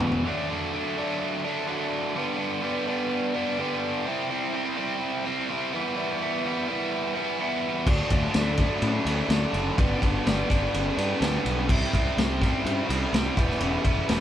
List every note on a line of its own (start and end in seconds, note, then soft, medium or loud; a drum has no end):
0.00 0.21 E1 medium
0.00 0.25 E2 medium
0.00 0.25 B2 medium
0.00 0.25 E3 loud
0.00 floor tom loud
0.12 floor tom medium
0.25 0.72 D3 loud
0.25 0.50 F#3 loud
0.25 0.49 A3 loud
0.25 0.48 D4 loud
0.49 0.74 F#3 medium
0.49 0.75 A3 medium
0.49 0.76 D4 medium
0.74 1.21 D3 medium
0.74 0.99 F#3 medium
0.74 0.98 A3 medium
0.74 0.98 D4 medium
0.98 1.46 F#3 medium
0.98 1.44 A3 medium
0.98 1.43 D4 medium
1.44 1.66 F#3 medium
1.44 1.68 A3 medium
1.44 1.68 D4 medium
1.67 2.13 D3 medium
1.67 2.14 F#3 loud
1.67 2.14 A3 medium
1.67 2.15 D4 medium
2.15 2.63 G2 loud
2.15 2.61 D3 loud
2.15 2.40 G3 loud
2.15 2.38 B3 loud
2.15 2.37 D4 loud
2.38 2.62 G3 medium
2.38 2.63 B3 medium
2.38 2.63 D4 medium
2.62 3.10 D3 medium
2.62 2.90 G3 medium
2.62 2.87 B3 medium
2.62 2.86 D4 medium
2.87 3.36 G3 medium
2.87 3.34 B3 medium
2.87 3.33 D4 medium
3.34 3.59 G3 medium
3.34 3.58 B3 medium
3.34 3.59 D4 medium
3.58 4.04 G2 medium
3.58 4.05 D3 medium
3.58 4.06 G3 loud
3.58 4.05 B3 loud
3.58 4.05 D4 medium
4.05 4.51 C3 loud
4.05 4.32 G3 medium
4.05 4.30 C4 loud
4.05 4.30 E4 loud
4.30 4.53 G3 medium
4.30 4.54 C4 medium
4.30 4.55 E4 medium
4.52 5.01 C3 medium
4.52 4.79 G3 medium
4.52 4.77 C4 medium
4.52 4.76 E4 medium
4.77 5.27 G3 medium
4.77 5.25 C4 medium
4.77 5.24 E4 medium
5.25 5.49 G3 medium
5.25 5.49 C4 medium
5.25 5.50 E4 medium
5.49 5.71 C3 medium
5.49 5.72 G3 medium
5.49 5.72 C4 medium
5.49 5.72 E4 loud
5.73 5.94 E3 medium
5.73 5.95 G3 medium
5.73 5.96 B3 medium
5.73 5.97 E4 medium
5.95 6.42 E3 loud
5.95 6.22 G3 loud
5.95 6.21 B3 loud
5.95 6.20 E4 loud
6.21 6.44 G3 medium
6.21 6.45 B3 medium
6.21 6.45 E4 medium
6.44 6.92 E3 medium
6.44 6.70 G3 medium
6.44 6.69 B3 medium
6.44 6.67 E4 medium
6.68 7.17 G3 medium
6.68 7.16 B3 medium
6.68 7.14 E4 medium
7.15 7.39 G3 medium
7.15 7.40 B3 medium
7.15 7.40 E4 medium
7.39 7.86 E3 medium
7.39 7.86 G3 medium
7.39 7.87 B3 loud
7.39 7.87 E4 loud
7.86 8.02 D2 loud
7.86 8.33 D3 loud
7.86 8.12 F#3 loud
7.86 8.11 A3 loud
7.86 8.11 D4 loud
7.86 kick loud
7.86 crash loud
8.10 8.26 D2 loud
8.10 8.35 F#3 medium
8.10 8.35 A3 medium
8.10 8.37 D4 medium
8.10 kick medium
8.10 ride medium
8.34 8.66 D2 medium
8.34 8.83 D3 medium
8.34 8.61 F#3 medium
8.34 8.59 A3 medium
8.34 8.59 D4 medium
8.34 snare loud
8.34 ride loud
8.57 9.08 A3 medium
8.57 9.06 D4 medium
8.57 kick medium
8.57 snare soft
8.57 ride medium
8.62 9.08 F#3 medium
8.82 8.98 A2 medium
8.82 ride loud
9.05 9.21 D2 medium
9.05 9.31 A3 medium
9.05 9.31 D4 medium
9.05 ride medium
9.10 9.30 F#3 medium
9.29 9.45 D2 medium
9.29 9.77 D3 medium
9.29 9.77 F#3 loud
9.29 9.78 A3 medium
9.29 9.78 D4 loud
9.29 snare loud
9.29 ride loud
9.53 9.69 F#1 medium
9.53 ride medium
9.77 9.94 G1 loud
9.77 10.26 G2 loud
9.77 10.23 D3 loud
9.77 10.05 G3 loud
9.77 10.02 B3 loud
9.77 10.01 D4 loud
9.77 kick loud
9.77 ride loud
10.02 10.18 G1 loud
10.02 10.26 G3 medium
10.02 10.26 B3 medium
10.02 10.26 D4 medium
10.02 kick medium
10.02 ride medium
10.25 10.42 G1 medium
10.25 10.73 D3 medium
10.25 10.51 G3 medium
10.25 10.49 B3 medium
10.25 10.48 D4 medium
10.25 snare loud
10.25 ride loud
10.49 10.66 G1 medium
10.49 10.98 G3 medium
10.49 10.96 B3 medium
10.49 10.95 D4 medium
10.49 kick medium
10.49 ride medium
10.74 10.90 G1 loud
10.74 ride loud
10.97 11.13 G2 medium
10.97 11.21 G3 medium
10.97 11.21 B3 medium
10.97 11.22 D4 medium
10.97 ride medium
11.20 11.37 D2 medium
11.20 11.67 G2 medium
11.20 11.68 D3 medium
11.20 11.69 G3 loud
11.20 11.69 B3 loud
11.20 11.69 D4 loud
11.20 snare loud
11.20 ride loud
11.45 11.69 B1 medium
11.45 ride medium
11.69 11.85 C2 medium
11.69 12.15 C3 loud
11.69 11.96 G3 loud
11.69 11.94 C4 loud
11.69 11.94 E4 loud
11.69 kick loud
11.69 crash loud
11.93 12.09 C2 loud
11.93 12.18 G3 medium
11.93 12.18 C4 medium
11.93 12.19 E4 medium
11.93 kick medium
11.93 ride medium
12.17 12.48 C2 medium
12.17 12.65 C3 medium
12.17 12.44 G3 medium
12.17 12.42 C4 medium
12.17 12.41 E4 medium
12.17 snare loud
12.17 ride loud
12.42 12.90 G3 medium
12.42 12.89 C4 medium
12.42 12.87 E4 medium
12.42 kick medium
12.42 snare soft
12.42 ride medium
12.65 12.80 G2 loud
12.65 ride loud
12.88 13.05 C2 medium
12.88 13.12 G3 medium
12.88 13.13 C4 medium
12.88 13.14 E4 medium
12.88 ride medium
13.13 13.28 C2 medium
13.13 13.36 C3 medium
13.13 13.36 G3 loud
13.13 13.36 C4 medium
13.13 13.36 E4 medium
13.13 snare loud
13.13 ride loud
13.37 13.53 E1 medium
13.37 13.60 E3 medium
13.37 13.61 G3 medium
13.37 13.62 B3 medium
13.37 13.63 E4 medium
13.37 kick loud
13.37 ride medium
13.51 snare soft
13.60 13.76 E1 loud
13.60 14.07 E3 loud
13.60 13.86 G3 loud
13.60 13.85 B3 loud
13.60 13.83 E4 loud
13.60 ride loud
13.84 14.00 E1 medium
13.84 14.09 G3 medium
13.84 14.10 B3 medium
13.84 14.10 E4 medium
13.84 kick medium
13.84 ride medium
14.09 14.20 E1 medium
14.09 14.20 E3 medium
14.09 14.20 G3 medium
14.09 14.20 B3 medium
14.09 14.20 E4 medium
14.09 snare loud
14.09 ride loud